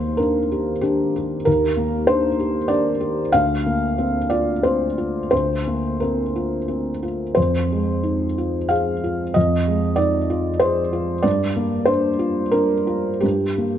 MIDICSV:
0, 0, Header, 1, 2, 480
1, 0, Start_track
1, 0, Tempo, 633580
1, 1108, Time_signature, 3, 2, 24, 8
1, 3016, Tempo, 674916
1, 6376, Tempo, 635593
1, 8776, Tempo, 676437
1, 10125, End_track
2, 0, Start_track
2, 0, Title_t, "Felt piano"
2, 0, Program_c, 0, 0
2, 0, Control_c, 0, 64, 127
2, 0, Note_on_c, 0, 39, 37
2, 0, Note_on_c, 0, 58, 28
2, 0, Note_on_c, 0, 72, 65
2, 130, Note_on_c, 0, 70, 48
2, 134, Note_off_c, 0, 72, 0
2, 148, Note_on_c, 0, 62, 31
2, 292, Note_off_c, 0, 58, 0
2, 391, Note_on_c, 0, 67, 31
2, 533, Note_off_c, 0, 62, 0
2, 605, Note_off_c, 0, 67, 0
2, 616, Note_on_c, 0, 67, 54
2, 622, Note_off_c, 0, 70, 0
2, 629, Note_on_c, 0, 62, 34
2, 866, Note_off_c, 0, 67, 0
2, 878, Note_on_c, 0, 67, 32
2, 1014, Note_off_c, 0, 62, 0
2, 1079, Note_off_c, 0, 39, 0
2, 1100, Note_on_c, 0, 70, 70
2, 1112, Note_on_c, 0, 39, 45
2, 1122, Control_c, 0, 64, 0
2, 1237, Control_c, 0, 64, 127
2, 1256, Note_off_c, 0, 67, 0
2, 1339, Note_on_c, 0, 58, 34
2, 1569, Note_on_c, 0, 72, 74
2, 1575, Note_off_c, 0, 70, 0
2, 1580, Note_on_c, 0, 62, 38
2, 1716, Note_off_c, 0, 58, 0
2, 1815, Note_on_c, 0, 67, 37
2, 1953, Note_off_c, 0, 62, 0
2, 2031, Note_on_c, 0, 74, 70
2, 2042, Note_off_c, 0, 72, 0
2, 2042, Note_on_c, 0, 62, 36
2, 2190, Note_off_c, 0, 67, 0
2, 2275, Note_on_c, 0, 67, 36
2, 2427, Note_off_c, 0, 62, 0
2, 2497, Note_off_c, 0, 39, 0
2, 2518, Note_off_c, 0, 74, 0
2, 2518, Note_on_c, 0, 77, 81
2, 2521, Note_off_c, 0, 67, 0
2, 2528, Note_on_c, 0, 38, 48
2, 2538, Control_c, 0, 64, 0
2, 2674, Control_c, 0, 64, 127
2, 2775, Note_on_c, 0, 58, 35
2, 3017, Note_on_c, 0, 60, 35
2, 3159, Note_off_c, 0, 58, 0
2, 3241, Note_on_c, 0, 74, 61
2, 3247, Note_off_c, 0, 77, 0
2, 3250, Note_on_c, 0, 65, 33
2, 3391, Note_off_c, 0, 60, 0
2, 3480, Note_off_c, 0, 74, 0
2, 3480, Note_on_c, 0, 72, 57
2, 3487, Note_on_c, 0, 60, 31
2, 3626, Note_off_c, 0, 65, 0
2, 3725, Note_on_c, 0, 65, 30
2, 3867, Note_off_c, 0, 60, 0
2, 3936, Note_off_c, 0, 38, 0
2, 3949, Note_off_c, 0, 72, 0
2, 3960, Note_on_c, 0, 72, 62
2, 3970, Note_on_c, 0, 38, 38
2, 3975, Control_c, 0, 64, 0
2, 4111, Note_off_c, 0, 65, 0
2, 4121, Control_c, 0, 64, 127
2, 4219, Note_on_c, 0, 58, 26
2, 4449, Note_off_c, 0, 72, 0
2, 4452, Note_on_c, 0, 70, 42
2, 4466, Note_on_c, 0, 60, 29
2, 4604, Note_off_c, 0, 58, 0
2, 4706, Note_on_c, 0, 65, 29
2, 4850, Note_off_c, 0, 60, 0
2, 4935, Note_on_c, 0, 60, 26
2, 5091, Note_off_c, 0, 65, 0
2, 5182, Note_on_c, 0, 65, 27
2, 5185, Note_off_c, 0, 70, 0
2, 5327, Note_off_c, 0, 60, 0
2, 5400, Note_off_c, 0, 38, 0
2, 5409, Note_on_c, 0, 72, 62
2, 5424, Note_off_c, 0, 65, 0
2, 5427, Note_on_c, 0, 41, 40
2, 5438, Control_c, 0, 64, 0
2, 5538, Control_c, 0, 64, 127
2, 5677, Note_on_c, 0, 56, 27
2, 5898, Note_on_c, 0, 63, 31
2, 6047, Note_off_c, 0, 56, 0
2, 6145, Note_on_c, 0, 65, 30
2, 6283, Note_off_c, 0, 63, 0
2, 6362, Note_on_c, 0, 77, 61
2, 6370, Note_off_c, 0, 72, 0
2, 6374, Note_on_c, 0, 68, 34
2, 6532, Note_off_c, 0, 65, 0
2, 6627, Note_on_c, 0, 65, 31
2, 6767, Note_off_c, 0, 68, 0
2, 6836, Note_off_c, 0, 41, 0
2, 6856, Note_on_c, 0, 75, 70
2, 6857, Note_off_c, 0, 77, 0
2, 6872, Note_on_c, 0, 41, 40
2, 6879, Control_c, 0, 64, 0
2, 7006, Control_c, 0, 64, 127
2, 7010, Note_off_c, 0, 65, 0
2, 7107, Note_on_c, 0, 56, 32
2, 7322, Note_on_c, 0, 74, 67
2, 7335, Note_on_c, 0, 63, 35
2, 7340, Note_off_c, 0, 75, 0
2, 7488, Note_off_c, 0, 56, 0
2, 7579, Note_on_c, 0, 65, 38
2, 7722, Note_off_c, 0, 63, 0
2, 7804, Note_on_c, 0, 72, 72
2, 7812, Note_off_c, 0, 74, 0
2, 7823, Note_on_c, 0, 68, 37
2, 7964, Note_off_c, 0, 65, 0
2, 8053, Note_on_c, 0, 65, 40
2, 8203, Note_off_c, 0, 68, 0
2, 8271, Note_off_c, 0, 41, 0
2, 8279, Note_on_c, 0, 74, 77
2, 8288, Note_off_c, 0, 72, 0
2, 8288, Note_on_c, 0, 43, 49
2, 8293, Note_off_c, 0, 65, 0
2, 8311, Control_c, 0, 64, 0
2, 8421, Control_c, 0, 64, 127
2, 8534, Note_on_c, 0, 58, 37
2, 8755, Note_on_c, 0, 72, 71
2, 8769, Note_off_c, 0, 74, 0
2, 8771, Note_on_c, 0, 62, 37
2, 8916, Note_off_c, 0, 58, 0
2, 8994, Note_on_c, 0, 65, 38
2, 9145, Note_off_c, 0, 62, 0
2, 9224, Note_on_c, 0, 70, 67
2, 9232, Note_off_c, 0, 72, 0
2, 9236, Note_on_c, 0, 62, 33
2, 9378, Note_off_c, 0, 65, 0
2, 9476, Note_on_c, 0, 65, 32
2, 9627, Note_off_c, 0, 62, 0
2, 9697, Note_off_c, 0, 43, 0
2, 9714, Note_on_c, 0, 67, 55
2, 9720, Note_off_c, 0, 70, 0
2, 9732, Note_on_c, 0, 43, 38
2, 9746, Control_c, 0, 64, 0
2, 9875, Note_off_c, 0, 65, 0
2, 9883, Control_c, 0, 64, 127
2, 9979, Note_on_c, 0, 58, 28
2, 10125, Note_off_c, 0, 43, 0
2, 10125, Note_off_c, 0, 58, 0
2, 10125, Note_off_c, 0, 67, 0
2, 10125, End_track
0, 0, End_of_file